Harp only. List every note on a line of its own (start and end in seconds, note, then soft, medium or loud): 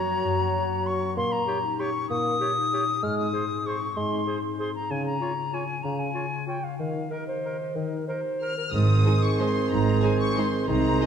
0.00 0.23 F#2 medium
0.00 0.38 A#3 soft
0.00 0.70 F#4 soft
0.00 0.86 A#4 soft
0.10 0.54 C#4 soft
0.24 1.18 F#2 medium
0.40 3.05 A#3 soft
0.55 1.01 C#4 soft
0.71 1.18 F#4 soft
0.87 3.05 A#4 soft
1.02 1.31 C#4 soft
1.17 2.09 A#2 medium
1.32 2.24 C#4 soft
1.48 1.94 D#4 soft
1.64 2.56 G4 soft
1.80 2.72 C#5 soft
1.96 2.39 D#4 soft
2.10 3.04 A#2 medium
2.25 3.04 C#4 soft
2.41 2.88 D#4 soft
2.57 3.05 G4 soft
2.73 3.05 C#5 soft
2.89 3.33 D#4 soft
3.03 3.96 G#2 soft
3.19 4.11 C4 soft
3.34 3.80 D#4 soft
3.51 4.43 G#4 soft
3.66 4.59 C5 soft
3.82 4.27 D#4 soft
3.97 4.91 G#2 soft
4.12 4.92 C4 soft
4.28 4.74 D#4 soft
4.44 5.37 G#4 soft
4.60 4.92 C5 soft
4.75 4.91 D#4 soft
4.90 5.83 C#3 soft
5.06 5.98 C#4 soft
5.22 5.68 F4 soft
5.54 6.46 C#5 soft
5.69 6.13 F4 soft
5.84 6.80 C#3 soft
5.99 6.80 C#4 soft
6.15 6.62 F4 soft
6.30 6.79 G#4 soft
6.47 6.80 C#5 soft
6.63 6.80 F4 soft
6.79 7.75 D#3 soft
6.95 7.91 D#4 soft
7.11 7.59 G4 soft
7.27 8.24 A#4 soft
7.45 8.41 D#5 soft
7.61 8.08 G4 soft
7.77 8.74 D#3 soft
7.92 9.05 D#4 soft
8.09 8.57 G4 soft
8.26 8.75 A#4 soft
8.43 11.06 D#5 soft
8.58 8.74 G4 soft
8.74 9.70 G#2 soft
8.90 9.85 G#3 soft
9.06 9.55 D#4 soft
9.23 10.19 G#4 soft
9.56 10.02 D#4 soft
9.71 10.70 G#2 soft
9.86 10.83 G#3 soft
10.03 10.52 D#4 soft
10.37 11.06 C5 soft
10.53 11.00 D#4 soft
10.69 11.06 C3 soft
10.85 11.06 G#3 soft